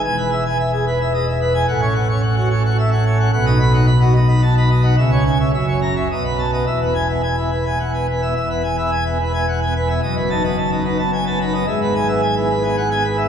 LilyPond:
<<
  \new Staff \with { instrumentName = "Pipe organ" } { \time 3/4 \key e \major \tempo 4 = 109 gis''16 b'16 e''16 gis''16 e''16 gis'16 b'16 e''16 dis''16 e''16 b'16 gis''16 | fis''16 cis''16 fis''16 cis''16 fis''16 fis'16 cis''16 fis''16 e''16 fis''16 cis''16 fis''16 | fis''16 dis''16 b''16 fis''16 b''16 fis'16 dis''16 b''16 a''16 b''16 dis''16 fis''16 | e''16 cis''16 gis''16 e''16 e''16 cis''16 ais''16 e''16 dis''16 b'16 a''16 dis''16 |
e''16 b'16 gis''16 e''16 gis''16 e'16 b'16 gis''16 fis''16 gis''16 b'16 e''16 | e''16 b'16 gis''16 e''16 gis''16 e'16 b'16 gis''16 fis''16 gis''16 b'16 e''16 | dis''16 b'16 a''16 dis''16 a''16 dis'16 b'16 a''16 gis''16 a''16 b'16 dis''16 | e''16 b'16 gis''16 e''16 gis''16 e'16 b'16 gis''16 fis''16 gis''16 b'16 e''16 | }
  \new Staff \with { instrumentName = "Pipe organ" } { \time 3/4 \key e \major << { e,2. | a,16 cis'16 r16 cis'16 r16 cis'16 r16 cis'16 r16 cis'16 r16 cis'16 | b,16 dis'16 r16 dis'16 r16 dis'16 r16 dis'16 r16 dis'16 r16 dis'16 | cis16 cis'16 r16 cis'16 fis,16 cis'16 r16 cis'16 b,16 b16 r16 b16 |
e,16 b16 r16 b16 r16 b16 r16 b16 r16 b16 r16 b16 | e,16 b16 r16 b16 r16 b16 r16 b16 r16 b16 r16 b16 | fis,16 b16 dis'16 b16 r16 b16 dis'16 b16 r16 b16 dis'16 b16 | gis,16 b16 r16 b16 r16 b16 r16 b16 r16 b16 r16 b16 | } \\ { e,,2. | a,,2. | b,,2. | cis,4 fis,,4 b,,4 |
e,,2. | e,,2. | fis,,2. | gis,,2. | } >> }
>>